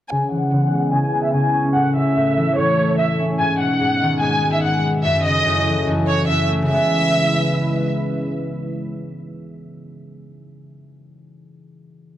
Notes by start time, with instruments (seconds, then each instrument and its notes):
0.10 analog synth pad C#3 B3 E4 G#4, harp C#3, violin section G#5
0.31 harp E3, violin section F#5
0.53 harp C#3
0.72 harp G#3
0.92 harp C#3, violin section G#5
1.14 harp B3
1.24 violin section E5
1.34 harp C#3, violin section G#5
1.54 harp C#4
1.75 harp A2, analog synth pad A3 A4, violin section F#5
1.96 harp C#3, violin section E5
2.17 harp A2
2.37 harp E3
2.57 harp A2, violin section C#5
2.78 harp A3
2.98 harp A2, violin section E5
3.19 harp C#4
3.39 harp G#2, analog synth pad B2 G#3 D#4 G#4, violin section G#5
3.60 harp B2, violin section F#5
3.80 harp G#2
4.02 harp D#3
4.21 harp G#2, violin section G#5
4.43 harp G#3
4.52 violin section E5
4.63 harp G#2, violin section F#5
4.83 harp B3
5.04 harp F#2, analog synth pad C#3 F#3 E4 A4, violin section E5
5.24 harp C#3, violin section D#5
5.45 harp F#2
5.66 harp E3
5.87 harp F#2
6.06 harp F#3, violin section C#5
6.27 harp F#2, violin section E5
6.48 harp A3
6.62 harp C#3 E3
6.68 analog synth pad C#3 G#3 E4 B4, harp G#3, violin section E5
6.74 harp B3